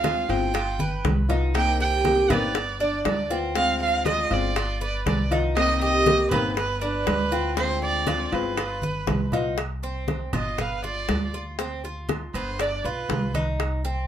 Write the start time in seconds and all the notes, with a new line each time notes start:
Already playing: D2 F5
0.03 D3 G#3 C4 F4, high bongo, high conga, high timbale, low timbale
0.29 G1 G#3 C4 F4 G5, high conga, high timbale
0.54 F4, muted nylon-string guitar stroke, high bongo, high conga, high timbale
0.79 B4, high bongo, high conga
1.04 C2, high bongo, low bongo, high conga, high timbale, low timbale
1.29 B3 D#4 F4, high bongo, low conga, high timbale
1.54 C3 D#3 A#3 C4 G4 G5, high bongo, high conga, high timbale
1.80 G4 G5, high bongo, high conga
2.04 D#3 A#3 C4 G4, high bongo, high conga, high timbale, low timbale
2.30 G1 D#3 A#3 B3 C4 G4 D5, high conga, low conga, high timbale
2.55 muted nylon-string guitar stroke, high bongo, high conga, high timbale
2.80 D4 D5, high bongo, high conga
3.05 D2 D5, high bongo, low bongo, high conga, high timbale, low timbale
3.30 B3 C4 F4, high bongo, high conga
3.55 D3 G#3 C4 F4 F5, high bongo, high conga, high timbale
3.81 F5, high bongo, high conga
4.05 D3 G#3 C4 F4 D#5, high bongo, high conga, high timbale, low timbale
4.30 G1 G#3 C4 F4 D5, high conga, high timbale
4.56 F4, muted nylon-string guitar stroke, high bongo, high conga, high timbale
4.81 B4 D5, high bongo, high conga
5.06 C2 D5, high bongo, low bongo, high conga, high timbale, low timbale
5.31 B3 D#4 F4, high bongo, high conga, high timbale
5.56 C3 D#3 A#3 C4 G4 D#5, high bongo, high conga, high timbale
5.81 G4 D#5, high bongo, high conga
6.06 D#3 A#3 C4 G4, high bongo, high conga, high timbale, low timbale
6.31 G1 D#3 A#3 B3 C4 G4 B4, high conga, low conga, high timbale
6.57 B4, muted nylon-string guitar stroke, high bongo, high conga, high timbale
6.81 D4 B4, high bongo, high conga
7.07 D2, high bongo, low bongo, high conga, high timbale, low timbale
7.32 B3 C4 F4, high bongo, high conga
7.57 D3 G#3 C4 F4 C5, high bongo, high conga, high timbale
7.82 D5, high bongo, high conga
8.07 D3 G#3 C4 F4, high bongo, high conga, high timbale, low timbale
8.32 G1 G#3 C4 F4 B4, high conga, high timbale
8.57 F4, muted nylon-string guitar stroke, high bongo, high conga, high timbale
8.82 B4, high bongo, high conga
9.07 C2, high bongo, low bongo, high conga, high timbale, low timbale
9.32 B3 D#4 F4, high bongo, low conga, high timbale
9.57 high bongo, high conga, high timbale
9.83 C4, high bongo, high conga
10.08 high bongo, high conga, high timbale, low timbale
10.33 G1 F4 D#5, high conga, low conga, high timbale
10.58 B4 F5, high bongo, high conga, low conga, high timbale
10.83 F4 D5, high bongo, high conga
11.08 D2, high bongo, low bongo, high conga, high timbale, low timbale
11.34 F4, high bongo, high conga
11.59 C4, high bongo, high conga, high timbale
11.84 F4, high bongo, high conga
12.09 high bongo, high conga, high timbale, low timbale
12.34 G1 B3 C5, high conga, high timbale
12.59 D4 D5, high bongo, high conga, high timbale
12.84 B1 F4 B4, high bongo, high conga
13.09 C2, high bongo, low bongo, high conga, high timbale, low timbale
13.34 D#4, high bongo, high conga, high timbale
13.59 high bongo, high conga, high timbale
13.84 C4, high bongo, high conga